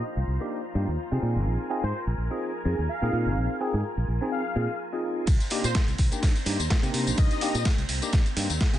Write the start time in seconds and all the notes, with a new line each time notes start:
Already playing: F4 C5 A#5
0.17 C2
0.27 C2
0.40 A#3 D4 D#4 G4
0.75 G2 A#3 D4 D#4 G4
0.88 D#2
1.11 C3 C4 D#4 F4 G#4
1.22 A#2 A#4 G#5
1.36 G#1
1.46 A#1
1.70 C4 D#4 F4 G#4
1.83 G#2 C5
2.07 A#1
2.18 A#1
2.31 C4 D#4 F4 G#4
2.65 F2 C4 D#4 F4 G#4
2.79 D#2
2.89 F5
3.02 A#2 C4 D#4 F4 G#4
3.13 A#2
3.26 G#1
3.37 A#1
3.60 C4 D#4 F4 G#4
3.74 G#2
3.97 A#1
4.08 A#1
4.21 C4 D#4 F4 G#4
4.32 F5
4.56 A#2 C4 D#4 F4 G#4
4.92 C4 D#4 F4 G#4
5.27 C2 C4 C5 A#5, kick, closed hi-hat, ride, tambourine
5.40 closed hi-hat, tambourine
5.50 A#3 D4 D#4 G4, open hi-hat, tambourine
5.64 A#2 C5, closed hi-hat, tambourine
5.75 kick, snare, closed hi-hat, ride, tambourine
5.88 C2, closed hi-hat, tambourine
5.98 C2, kick, open hi-hat, tambourine
6.12 A#3 D4 D#4 G4, closed hi-hat, tambourine
6.22 kick, snare, closed hi-hat, ride, tambourine
6.36 closed hi-hat, tambourine
6.46 G2 A#3 D4 D#4 G4, open hi-hat, tambourine
6.59 D#2, closed hi-hat, tambourine
6.70 kick, snare, closed hi-hat, ride, tambourine
6.82 C3 A#3 D4 D#4 G4, closed hi-hat, tambourine
6.94 C3, open hi-hat, tambourine
7.07 A#1, closed hi-hat, tambourine
7.17 C2 D#5, kick, closed hi-hat, ride, tambourine
7.31 closed hi-hat, tambourine
7.41 A#3 D4 D#4 G4, open hi-hat, tambourine
7.55 A#2, closed hi-hat, tambourine
7.65 kick, snare, closed hi-hat, ride, tambourine
7.78 C2, closed hi-hat, tambourine
7.89 C2, open hi-hat, tambourine
8.02 A#3 D4 D#4 G4, closed hi-hat, tambourine
8.13 kick, snare, closed hi-hat, ride, tambourine
8.26 closed hi-hat, tambourine
8.37 G2 A#3 D4 D#4 G4, open hi-hat, tambourine
8.50 D#2, closed hi-hat, tambourine
8.61 kick, snare, closed hi-hat, ride
8.73 C3 C4 D#4 F4 G#4, closed hi-hat, tambourine